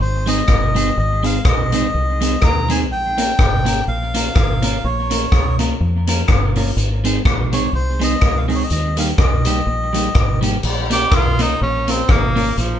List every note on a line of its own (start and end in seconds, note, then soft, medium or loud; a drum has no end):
0.00 0.41 G#1 medium
0.00 0.29 C5 medium
0.26 0.40 G#3 medium
0.26 0.40 C4 medium
0.26 0.40 D#4 medium
0.26 0.40 G#4 medium
0.26 0.98 D#5 medium
0.26 closed hi-hat medium
0.48 0.90 G1 medium
0.48 kick loud
0.48 cross-stick loud
0.75 0.88 G#3 medium
0.75 0.89 C4 medium
0.75 0.89 D#4 medium
0.75 0.89 G#4 loud
0.75 closed hi-hat medium
0.97 1.38 G#1 loud
0.97 1.24 D#5 medium
1.23 1.36 G#3 medium
1.23 1.37 C4 medium
1.23 1.37 D#4 medium
1.23 1.37 G#4 medium
1.23 1.46 F5 medium
1.23 closed hi-hat medium
1.45 1.86 A#1 medium
1.45 2.46 D#5 medium
1.45 kick loud
1.45 cross-stick loud
1.72 1.85 G#3 medium
1.72 1.86 C4 medium
1.72 1.86 D#4 loud
1.72 1.86 G#4 medium
1.72 closed hi-hat medium
1.94 2.35 C2 medium
2.21 2.34 G#3 medium
2.21 2.34 C4 medium
2.21 2.35 D#4 medium
2.21 2.35 G#4 medium
2.21 closed hi-hat medium
2.42 2.91 D#2 medium
2.42 2.71 A#5 loud
2.42 kick loud
2.42 cross-stick loud
2.69 2.82 G#3 medium
2.69 2.83 C4 medium
2.69 2.83 D#4 loud
2.69 2.83 G#4 medium
2.69 2.80 G#5 loud
2.69 closed hi-hat medium
2.91 3.32 A#1 medium
2.91 3.84 G5 loud
3.18 3.31 A#3 medium
3.18 3.31 C#4 medium
3.18 3.31 F4 medium
3.18 3.31 A#4 medium
3.18 closed hi-hat medium
3.39 3.80 G#1 medium
3.39 kick loud
3.39 cross-stick loud
3.65 3.78 A#3 medium
3.65 3.79 C#4 medium
3.65 3.79 F4 medium
3.65 3.79 A#4 medium
3.65 closed hi-hat medium
3.88 4.29 A#1 medium
3.88 4.87 F5 loud
4.14 4.27 A#3 medium
4.14 4.28 C#4 medium
4.14 4.28 F4 medium
4.14 4.28 A#4 medium
4.14 closed hi-hat medium
4.35 4.77 G#1 medium
4.35 kick loud
4.35 cross-stick loud
4.62 4.76 A#3 medium
4.62 4.76 C#4 loud
4.62 4.76 F4 medium
4.62 4.76 A#4 medium
4.62 closed hi-hat medium
4.84 5.25 A#1 loud
4.84 5.56 C#5 medium
5.11 5.24 A#3 medium
5.11 5.24 C#4 medium
5.11 5.24 F4 medium
5.11 5.24 A#4 medium
5.11 closed hi-hat medium
5.32 5.73 C#2 medium
5.32 kick loud
5.32 cross-stick loud
5.59 5.72 A#3 medium
5.59 5.72 C#4 medium
5.59 5.73 F4 medium
5.59 5.73 A#4 medium
5.59 closed hi-hat medium
5.81 6.22 F2 medium
6.07 6.21 A#3 medium
6.07 6.21 C#4 medium
6.07 6.21 F4 medium
6.07 6.21 A#4 medium
6.07 closed hi-hat loud
6.28 6.70 G1 medium
6.28 kick loud
6.28 cross-stick loud
6.56 6.69 A#3 medium
6.56 6.70 C#4 medium
6.56 6.70 F4 medium
6.56 6.70 A#4 medium
6.56 open hi-hat medium
6.76 7.18 G#1 loud
6.76 hi-hat pedal medium
7.04 7.17 G#3 medium
7.04 7.18 C4 medium
7.04 7.18 D#4 medium
7.04 7.18 G#4 loud
7.04 closed hi-hat medium
7.25 7.67 A#1 medium
7.25 kick loud
7.25 cross-stick loud
7.53 7.66 G#3 medium
7.53 7.66 C4 medium
7.53 7.66 D#4 medium
7.53 7.66 G#4 medium
7.53 7.73 C#5 medium
7.53 closed hi-hat medium
7.73 8.14 C2 medium
7.73 8.02 C5 medium
8.00 8.13 G#3 medium
8.00 8.14 C4 medium
8.00 8.14 D#4 medium
8.00 8.14 G#4 medium
8.00 8.38 D#5 loud
8.00 closed hi-hat medium
8.21 8.63 C#2 medium
8.21 kick loud
8.21 cross-stick loud
8.37 8.47 F5 medium
8.47 8.62 G#3 medium
8.47 8.62 C4 medium
8.47 8.62 D#4 medium
8.47 8.63 G#4 loud
8.47 8.55 D#5 medium
8.47 open hi-hat soft
8.55 8.63 C#5 medium
8.63 8.70 D#5 medium
8.70 9.12 D#2 medium
8.70 8.97 D#5 loud
8.70 hi-hat pedal medium
8.97 9.10 G3 medium
8.97 9.11 A#3 medium
8.97 9.11 D#4 medium
8.97 9.11 G4 medium
8.97 9.08 F5 medium
8.97 closed hi-hat medium
9.18 9.60 C2 medium
9.18 10.39 D#5 medium
9.18 kick loud
9.18 cross-stick loud
9.45 9.59 G3 medium
9.45 9.59 A#3 medium
9.45 9.59 D#4 medium
9.45 9.60 G4 loud
9.45 closed hi-hat medium
9.67 10.08 A#1 loud
9.93 10.07 G3 medium
9.93 10.07 A#3 medium
9.93 10.07 D#4 medium
9.93 10.08 G4 medium
9.93 closed hi-hat medium
10.15 10.56 G#1 medium
10.15 kick loud
10.15 cross-stick loud
10.41 10.55 G3 medium
10.41 10.56 A#3 loud
10.41 10.56 D#4 medium
10.41 10.56 G4 loud
10.41 closed hi-hat medium
10.63 11.05 A#1 loud
10.63 crash medium
10.90 11.04 A#3 medium
10.90 11.04 C#4 medium
10.90 11.04 F4 medium
10.90 11.17 G4 loud
10.90 11.05 A#4 medium
10.90 closed hi-hat loud
11.11 11.53 C2 medium
11.11 11.43 F4 loud
11.11 kick loud
11.11 cross-stick loud
11.39 11.52 A#3 medium
11.39 11.52 C#4 medium
11.39 11.62 D#4 loud
11.39 11.53 F4 medium
11.39 11.53 A#4 loud
11.39 closed hi-hat medium
11.61 12.02 A#1 medium
11.61 11.92 C#4 loud
11.88 12.01 A#3 medium
11.88 12.12 C4 loud
11.88 12.01 C#4 medium
11.88 12.01 F4 medium
11.88 12.01 A#4 medium
11.88 closed hi-hat medium
12.09 12.50 G#1 medium
12.09 12.58 A#3 loud
12.09 kick loud
12.09 cross-stick loud
12.36 12.49 A#3 medium
12.36 12.49 C#4 medium
12.36 12.49 F4 loud
12.36 12.49 A#4 loud
12.36 open hi-hat medium
12.57 12.79 A#1 loud
12.57 12.79 F3 medium
12.57 hi-hat pedal medium